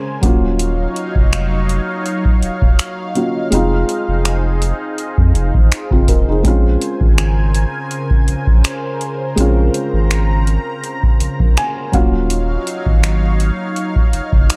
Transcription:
0.00 0.19 C#3 medium
0.00 0.22 G#3 medium
0.00 0.23 C4 soft
0.00 0.23 C#4 medium
0.00 0.24 G#4 medium
0.00 0.19 A#4 medium
0.00 0.19 C5 medium
0.00 0.19 G#5 medium
0.21 0.87 D#1 loud
0.21 3.11 F#3 medium
0.21 3.49 F#3 medium
0.21 3.11 A#3 medium
0.21 3.12 C#4 medium
0.21 3.49 D#4 medium
0.21 3.49 C#5 medium
0.21 6.41 F5 medium
0.21 kick loud
0.21 closed hi-hat medium
0.26 3.13 F4 medium
0.59 closed hi-hat medium
0.96 closed hi-hat medium
1.16 1.80 F1 medium
1.16 kick medium
1.33 finger snap loud
1.33 closed hi-hat medium
1.69 closed hi-hat medium
2.06 closed hi-hat medium
2.25 kick medium
2.42 2.50 D#1 soft
2.42 closed hi-hat medium
2.62 2.77 D#1 medium
2.62 kick medium
2.79 finger snap loud
2.79 closed hi-hat medium
3.15 3.52 F#3 medium
3.15 3.52 A#3 soft
3.15 3.52 C#4 soft
3.15 3.53 F4 medium
3.15 closed hi-hat medium
3.50 3.84 F1 loud
3.50 6.40 G#3 medium
3.50 5.31 C4 medium
3.50 6.42 D#4 medium
3.50 5.32 D#4 medium
3.50 6.42 G#4 medium
3.50 11.89 C5 medium
3.50 closed hi-hat medium
3.55 5.33 F4 medium
3.89 closed hi-hat medium
4.08 4.73 F1 medium
4.25 finger snap loud
4.25 closed hi-hat medium
4.62 closed hi-hat medium
4.98 closed hi-hat medium
5.18 5.33 F2 medium
5.18 kick medium
5.35 5.52 F1 loud
5.35 closed hi-hat medium
5.55 5.70 G#1 medium
5.55 kick medium
5.72 finger snap loud
5.72 closed hi-hat medium
5.91 6.06 F#1 medium
5.91 6.08 C4 medium
5.91 6.08 F4 medium
5.91 kick medium
6.08 6.26 D#1 medium
6.08 6.28 F4 medium
6.08 6.27 A#4 medium
6.08 kick medium
6.08 closed hi-hat medium
6.28 6.46 F1 loud
6.28 6.63 D#4 soft
6.28 6.63 G#4 medium
6.43 6.77 A#1 loud
6.43 11.89 C#3 medium
6.43 9.33 G#3 medium
6.43 9.33 C4 medium
6.43 9.34 C#4 medium
6.43 11.89 A#4 medium
6.43 9.34 G#5 medium
6.43 kick loud
6.43 closed hi-hat medium
6.48 9.35 F4 medium
6.82 closed hi-hat medium
7.01 7.66 G#1 medium
7.01 kick medium
7.18 finger snap loud
7.18 closed hi-hat medium
7.55 closed hi-hat medium
7.91 closed hi-hat medium
8.11 kick medium
8.28 8.36 A#1 soft
8.28 closed hi-hat medium
8.47 8.62 A#1 medium
8.47 kick medium
8.64 finger snap loud
8.64 closed hi-hat medium
9.01 closed hi-hat medium
9.36 9.70 A#1 loud
9.36 11.89 G#3 medium
9.36 11.89 C4 medium
9.36 11.90 C#4 medium
9.36 11.91 A#5 medium
9.36 closed hi-hat medium
9.40 11.91 F4 medium
9.74 closed hi-hat medium
9.94 10.58 G#1 medium
10.11 finger snap loud
10.11 closed hi-hat medium
10.47 closed hi-hat medium
10.84 closed hi-hat medium
11.03 kick medium
11.20 11.28 A#1 soft
11.20 closed hi-hat medium
11.40 11.55 A#1 medium
11.40 kick medium
11.57 11.91 G#5 medium
11.57 finger snap loud
11.57 closed hi-hat medium
11.92 12.58 D#1 loud
11.92 14.56 F#3 medium
11.92 14.56 A#3 medium
11.92 14.56 C#4 medium
11.92 14.56 D#4 medium
11.92 14.56 C#5 medium
11.92 14.56 F5 medium
11.92 12.28 F5 medium
11.92 kick loud
11.92 closed hi-hat medium
11.97 14.56 F4 medium
12.30 closed hi-hat medium
12.67 closed hi-hat medium
12.86 13.51 G#1 medium
12.86 kick medium
13.03 finger snap loud
13.03 closed hi-hat medium
13.40 closed hi-hat medium
13.76 closed hi-hat medium
13.96 kick medium
14.13 14.21 F#1 soft
14.13 closed hi-hat medium
14.33 14.48 F#1 medium
14.33 kick medium
14.50 finger snap loud
14.50 closed hi-hat medium

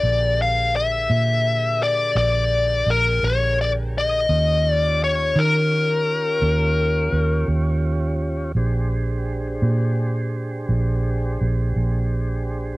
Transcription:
0.00 1.06 A#1 medium
0.00 0.42 D5 medium
0.05 4.26 D3 medium
0.05 4.27 G4 medium
0.05 4.26 G#4 medium
0.05 4.27 A#4 medium
0.42 0.74 F5 medium
0.76 1.86 E5 medium
1.10 2.13 A#2 medium
1.83 2.16 D5 medium
2.15 2.83 A#1 medium
2.15 2.90 D5 loud
2.86 3.20 A#1 medium
2.86 3.26 A#4 medium
3.23 4.26 A#1 medium
3.23 3.57 C#5 medium
3.61 3.70 D5 medium
3.98 4.70 D#5 medium
4.29 5.32 D#2 medium
4.29 8.52 C#4 medium
4.29 8.52 F4 medium
4.29 8.52 G4 medium
4.29 8.52 C#5 medium
4.70 5.03 D5 medium
5.04 5.39 C#5 medium
5.36 6.38 D#3 medium
5.36 7.46 A#4 medium
6.42 7.09 D#2 medium
7.12 7.46 D#2 medium
7.48 8.51 D#2 medium
8.55 9.58 A#1 medium
8.55 12.77 D4 medium
8.55 12.77 G4 medium
8.55 12.77 G#4 medium
8.55 12.77 C5 medium
9.62 10.65 A#2 medium
10.69 11.36 A#1 medium
11.41 11.73 A#1 medium
11.76 12.77 A#1 medium

